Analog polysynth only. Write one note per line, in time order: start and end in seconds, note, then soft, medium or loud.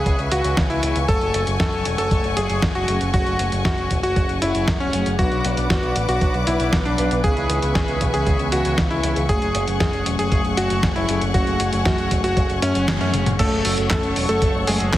0.00 0.80 E3 medium
0.00 0.80 B3 medium
0.00 0.80 C#4 medium
0.00 0.80 G#4 loud
0.83 1.05 E3 medium
0.83 1.05 B3 medium
0.83 1.05 C#4 medium
0.83 1.05 G#4 loud
1.09 2.85 F#3 medium
1.09 2.85 A3 medium
1.09 2.85 C#4 medium
1.09 2.85 G#5 loud
2.88 3.11 F#3 medium
2.88 3.11 A3 medium
2.88 3.11 C#4 medium
2.88 3.11 G#4 loud
3.14 4.90 F#3 medium
3.14 4.90 A3 medium
3.14 4.90 C#4 medium
3.14 4.90 G#4 loud
4.93 5.16 F#3 medium
4.93 5.16 A3 medium
4.93 5.16 C#4 medium
4.93 5.16 G#4 loud
5.19 6.95 F#3 medium
5.19 6.95 B3 medium
5.19 6.95 D4 medium
5.19 6.95 B4 loud
6.98 7.21 F#3 loud
6.98 7.21 B3 medium
6.98 7.21 D4 medium
6.98 7.21 B4 loud
7.24 9.00 E3 medium
7.24 9.00 G#4 loud
9.03 9.26 E3 loud
9.03 9.26 B3 medium
9.03 9.26 C#4 medium
9.03 9.26 G#4 loud
9.29 11.05 A3 medium
11.09 11.31 F#3 medium
11.09 11.31 A3 medium
11.09 11.31 C#4 medium
11.09 11.31 G#4 loud
11.34 13.11 F#3 medium
11.34 13.11 A3 medium
11.34 13.11 C#4 medium
11.34 13.11 G#4 loud
13.14 13.36 F#3 medium
13.14 13.36 A3 medium
13.14 13.36 C#4 medium
13.14 13.36 G#4 loud
13.39 14.65 F#3 medium
13.39 14.65 A3 medium
13.39 14.65 C#4 medium
13.39 14.65 A4 loud
14.67 14.98 F#3 medium
14.67 14.98 A3 medium
14.67 14.98 C#4 medium
14.67 14.98 A4 medium